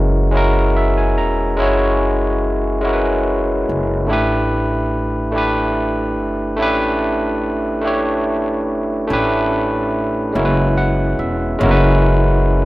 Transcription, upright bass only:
0, 0, Header, 1, 2, 480
1, 0, Start_track
1, 0, Tempo, 833333
1, 918, Time_signature, 6, 3, 24, 8
1, 7286, End_track
2, 0, Start_track
2, 0, Title_t, "Upright bass"
2, 0, Program_c, 0, 32
2, 0, Note_on_c, 0, 30, 127
2, 686, Note_off_c, 0, 30, 0
2, 686, Note_on_c, 0, 28, 80
2, 927, Note_off_c, 0, 28, 0
2, 927, Note_on_c, 0, 30, 108
2, 2100, Note_off_c, 0, 30, 0
2, 2126, Note_on_c, 0, 30, 88
2, 2366, Note_off_c, 0, 30, 0
2, 2366, Note_on_c, 0, 33, 119
2, 3565, Note_off_c, 0, 33, 0
2, 3565, Note_on_c, 0, 31, 90
2, 3803, Note_off_c, 0, 31, 0
2, 3803, Note_on_c, 0, 33, 125
2, 5004, Note_off_c, 0, 33, 0
2, 5004, Note_on_c, 0, 31, 76
2, 5218, Note_off_c, 0, 31, 0
2, 5242, Note_on_c, 0, 33, 104
2, 5937, Note_off_c, 0, 33, 0
2, 5964, Note_on_c, 0, 30, 111
2, 6418, Note_off_c, 0, 30, 0
2, 6445, Note_on_c, 0, 28, 86
2, 6659, Note_off_c, 0, 28, 0
2, 6685, Note_on_c, 0, 30, 125
2, 7286, Note_off_c, 0, 30, 0
2, 7286, End_track
0, 0, End_of_file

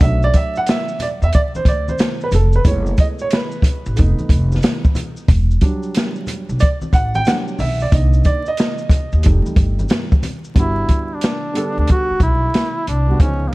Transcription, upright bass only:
0, 0, Header, 1, 3, 480
1, 0, Start_track
1, 0, Key_signature, 1, "major"
1, 0, Tempo, 659341
1, 9, Time_signature, 4, 2, 24, 8
1, 9859, End_track
2, 0, Start_track
2, 0, Title_t, "Upright bass"
2, 0, Program_c, 0, 32
2, 5, Note_on_c, 0, 35, 102
2, 202, Note_off_c, 0, 35, 0
2, 887, Note_on_c, 0, 40, 86
2, 954, Note_off_c, 0, 40, 0
2, 1203, Note_on_c, 0, 38, 80
2, 1400, Note_off_c, 0, 38, 0
2, 1689, Note_on_c, 0, 29, 93
2, 1884, Note_off_c, 0, 29, 0
2, 1928, Note_on_c, 0, 30, 97
2, 2123, Note_off_c, 0, 30, 0
2, 2812, Note_on_c, 0, 33, 93
2, 2876, Note_off_c, 0, 33, 0
2, 2906, Note_on_c, 0, 29, 100
2, 3028, Note_off_c, 0, 29, 0
2, 3127, Note_on_c, 0, 29, 95
2, 3323, Note_off_c, 0, 29, 0
2, 3848, Note_on_c, 0, 28, 115
2, 4044, Note_off_c, 0, 28, 0
2, 4727, Note_on_c, 0, 35, 84
2, 4794, Note_off_c, 0, 35, 0
2, 5046, Note_on_c, 0, 33, 90
2, 5242, Note_off_c, 0, 33, 0
2, 5530, Note_on_c, 0, 35, 94
2, 5724, Note_off_c, 0, 35, 0
2, 5768, Note_on_c, 0, 36, 100
2, 5964, Note_off_c, 0, 36, 0
2, 6644, Note_on_c, 0, 39, 92
2, 6712, Note_off_c, 0, 39, 0
2, 6740, Note_on_c, 0, 29, 110
2, 6864, Note_off_c, 0, 29, 0
2, 6961, Note_on_c, 0, 31, 93
2, 7159, Note_off_c, 0, 31, 0
2, 7685, Note_on_c, 0, 31, 87
2, 7882, Note_off_c, 0, 31, 0
2, 8571, Note_on_c, 0, 38, 80
2, 8636, Note_off_c, 0, 38, 0
2, 8881, Note_on_c, 0, 35, 90
2, 9079, Note_off_c, 0, 35, 0
2, 9375, Note_on_c, 0, 36, 82
2, 9567, Note_off_c, 0, 36, 0
2, 9608, Note_on_c, 0, 37, 88
2, 9804, Note_off_c, 0, 37, 0
2, 9859, End_track
3, 0, Start_track
3, 0, Title_t, "Muted upright bass strokes"
3, 1132, Note_on_c, 9, 29, 48
3, 1205, Note_off_c, 9, 29, 0
3, 3046, Note_on_c, 9, 29, 46
3, 3119, Note_off_c, 9, 29, 0
3, 4962, Note_on_c, 9, 29, 51
3, 5034, Note_off_c, 9, 29, 0
3, 6886, Note_on_c, 9, 29, 52
3, 6959, Note_off_c, 9, 29, 0
3, 8812, Note_on_c, 9, 29, 45
3, 8885, Note_off_c, 9, 29, 0
3, 9859, End_track
0, 0, End_of_file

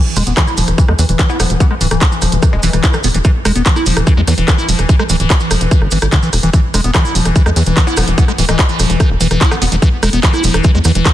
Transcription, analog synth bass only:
0, 0, Header, 1, 2, 480
1, 0, Start_track
1, 0, Tempo, 410959
1, 1873, Time_signature, 4, 2, 24, 8
1, 13006, End_track
2, 0, Start_track
2, 0, Title_t, "Analog synth bass"
2, 0, Program_c, 0, 38
2, 193, Note_on_c, 0, 28, 101
2, 262, Note_off_c, 0, 28, 0
2, 313, Note_on_c, 0, 28, 81
2, 382, Note_off_c, 0, 28, 0
2, 673, Note_on_c, 0, 28, 88
2, 741, Note_off_c, 0, 28, 0
2, 793, Note_on_c, 0, 28, 78
2, 862, Note_off_c, 0, 28, 0
2, 1033, Note_on_c, 0, 40, 79
2, 1102, Note_off_c, 0, 40, 0
2, 1153, Note_on_c, 0, 40, 89
2, 1222, Note_off_c, 0, 40, 0
2, 1273, Note_on_c, 0, 28, 83
2, 1342, Note_off_c, 0, 28, 0
2, 1633, Note_on_c, 0, 28, 91
2, 1701, Note_off_c, 0, 28, 0
2, 1753, Note_on_c, 0, 28, 81
2, 1822, Note_off_c, 0, 28, 0
2, 2113, Note_on_c, 0, 26, 92
2, 2181, Note_off_c, 0, 26, 0
2, 2233, Note_on_c, 0, 26, 87
2, 2302, Note_off_c, 0, 26, 0
2, 2593, Note_on_c, 0, 28, 91
2, 2662, Note_off_c, 0, 28, 0
2, 2713, Note_on_c, 0, 28, 81
2, 2781, Note_off_c, 0, 28, 0
2, 2953, Note_on_c, 0, 28, 79
2, 3022, Note_off_c, 0, 28, 0
2, 3073, Note_on_c, 0, 28, 92
2, 3142, Note_off_c, 0, 28, 0
2, 3193, Note_on_c, 0, 28, 86
2, 3262, Note_off_c, 0, 28, 0
2, 3553, Note_on_c, 0, 28, 91
2, 3621, Note_off_c, 0, 28, 0
2, 3673, Note_on_c, 0, 28, 85
2, 3742, Note_off_c, 0, 28, 0
2, 4033, Note_on_c, 0, 28, 92
2, 4102, Note_off_c, 0, 28, 0
2, 4153, Note_on_c, 0, 28, 80
2, 4222, Note_off_c, 0, 28, 0
2, 4513, Note_on_c, 0, 28, 93
2, 4582, Note_off_c, 0, 28, 0
2, 4633, Note_on_c, 0, 28, 76
2, 4702, Note_off_c, 0, 28, 0
2, 4873, Note_on_c, 0, 40, 77
2, 4942, Note_off_c, 0, 40, 0
2, 4993, Note_on_c, 0, 40, 97
2, 5062, Note_off_c, 0, 40, 0
2, 5113, Note_on_c, 0, 28, 87
2, 5182, Note_off_c, 0, 28, 0
2, 5473, Note_on_c, 0, 28, 96
2, 5542, Note_off_c, 0, 28, 0
2, 5593, Note_on_c, 0, 28, 77
2, 5662, Note_off_c, 0, 28, 0
2, 5953, Note_on_c, 0, 26, 98
2, 6022, Note_off_c, 0, 26, 0
2, 6073, Note_on_c, 0, 26, 85
2, 6142, Note_off_c, 0, 26, 0
2, 6433, Note_on_c, 0, 28, 95
2, 6502, Note_off_c, 0, 28, 0
2, 6553, Note_on_c, 0, 28, 79
2, 6622, Note_off_c, 0, 28, 0
2, 6793, Note_on_c, 0, 32, 80
2, 6862, Note_off_c, 0, 32, 0
2, 6913, Note_on_c, 0, 32, 92
2, 6982, Note_off_c, 0, 32, 0
2, 7033, Note_on_c, 0, 32, 84
2, 7102, Note_off_c, 0, 32, 0
2, 7393, Note_on_c, 0, 28, 98
2, 7462, Note_off_c, 0, 28, 0
2, 7513, Note_on_c, 0, 28, 84
2, 7582, Note_off_c, 0, 28, 0
2, 7873, Note_on_c, 0, 28, 94
2, 7941, Note_off_c, 0, 28, 0
2, 7993, Note_on_c, 0, 28, 88
2, 8062, Note_off_c, 0, 28, 0
2, 8353, Note_on_c, 0, 28, 92
2, 8422, Note_off_c, 0, 28, 0
2, 8473, Note_on_c, 0, 28, 78
2, 8542, Note_off_c, 0, 28, 0
2, 8713, Note_on_c, 0, 40, 78
2, 8782, Note_off_c, 0, 40, 0
2, 8833, Note_on_c, 0, 40, 92
2, 8901, Note_off_c, 0, 40, 0
2, 8953, Note_on_c, 0, 28, 84
2, 9021, Note_off_c, 0, 28, 0
2, 9313, Note_on_c, 0, 28, 99
2, 9381, Note_off_c, 0, 28, 0
2, 9433, Note_on_c, 0, 28, 84
2, 9502, Note_off_c, 0, 28, 0
2, 9793, Note_on_c, 0, 26, 95
2, 9861, Note_off_c, 0, 26, 0
2, 9912, Note_on_c, 0, 26, 79
2, 9981, Note_off_c, 0, 26, 0
2, 10272, Note_on_c, 0, 28, 89
2, 10341, Note_off_c, 0, 28, 0
2, 10392, Note_on_c, 0, 28, 75
2, 10461, Note_off_c, 0, 28, 0
2, 10633, Note_on_c, 0, 28, 81
2, 10701, Note_off_c, 0, 28, 0
2, 10752, Note_on_c, 0, 28, 93
2, 10821, Note_off_c, 0, 28, 0
2, 10872, Note_on_c, 0, 28, 86
2, 10941, Note_off_c, 0, 28, 0
2, 11232, Note_on_c, 0, 28, 97
2, 11301, Note_off_c, 0, 28, 0
2, 11352, Note_on_c, 0, 28, 83
2, 11421, Note_off_c, 0, 28, 0
2, 11712, Note_on_c, 0, 28, 97
2, 11781, Note_off_c, 0, 28, 0
2, 11832, Note_on_c, 0, 28, 82
2, 11901, Note_off_c, 0, 28, 0
2, 12193, Note_on_c, 0, 28, 97
2, 12261, Note_off_c, 0, 28, 0
2, 12312, Note_on_c, 0, 28, 79
2, 12381, Note_off_c, 0, 28, 0
2, 12553, Note_on_c, 0, 40, 76
2, 12622, Note_off_c, 0, 40, 0
2, 12673, Note_on_c, 0, 40, 91
2, 12742, Note_off_c, 0, 40, 0
2, 12793, Note_on_c, 0, 28, 85
2, 12862, Note_off_c, 0, 28, 0
2, 13006, End_track
0, 0, End_of_file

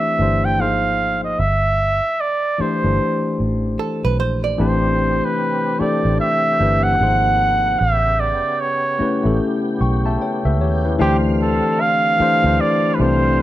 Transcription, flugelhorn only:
0, 0, Header, 1, 2, 480
1, 0, Start_track
1, 0, Tempo, 800000
1, 831, Time_signature, 4, 2, 24, 8
1, 8053, End_track
2, 0, Start_track
2, 0, Title_t, "Flugelhorn"
2, 0, Program_c, 0, 56
2, 0, Note_on_c, 0, 76, 92
2, 269, Note_on_c, 0, 79, 91
2, 278, Note_off_c, 0, 76, 0
2, 365, Note_on_c, 0, 77, 88
2, 374, Note_off_c, 0, 79, 0
2, 742, Note_off_c, 0, 77, 0
2, 745, Note_on_c, 0, 75, 83
2, 837, Note_on_c, 0, 76, 105
2, 846, Note_off_c, 0, 75, 0
2, 1323, Note_on_c, 0, 74, 90
2, 1332, Note_off_c, 0, 76, 0
2, 1565, Note_on_c, 0, 72, 79
2, 1574, Note_off_c, 0, 74, 0
2, 2038, Note_off_c, 0, 72, 0
2, 2760, Note_on_c, 0, 72, 92
2, 3150, Note_on_c, 0, 71, 92
2, 3159, Note_off_c, 0, 72, 0
2, 3480, Note_on_c, 0, 74, 82
2, 3489, Note_off_c, 0, 71, 0
2, 3715, Note_off_c, 0, 74, 0
2, 3721, Note_on_c, 0, 76, 101
2, 4102, Note_on_c, 0, 78, 114
2, 4111, Note_off_c, 0, 76, 0
2, 4677, Note_on_c, 0, 76, 106
2, 4686, Note_off_c, 0, 78, 0
2, 4920, Note_on_c, 0, 74, 88
2, 4929, Note_off_c, 0, 76, 0
2, 5163, Note_on_c, 0, 73, 92
2, 5172, Note_off_c, 0, 74, 0
2, 5637, Note_off_c, 0, 73, 0
2, 6608, Note_on_c, 0, 67, 106
2, 6704, Note_off_c, 0, 67, 0
2, 6848, Note_on_c, 0, 69, 101
2, 7085, Note_on_c, 0, 77, 127
2, 7094, Note_off_c, 0, 69, 0
2, 7563, Note_on_c, 0, 74, 104
2, 7572, Note_off_c, 0, 77, 0
2, 7768, Note_on_c, 0, 71, 67
2, 7777, Note_off_c, 0, 74, 0
2, 7805, Note_on_c, 0, 72, 96
2, 7814, Note_off_c, 0, 71, 0
2, 8053, Note_off_c, 0, 72, 0
2, 8053, End_track
0, 0, End_of_file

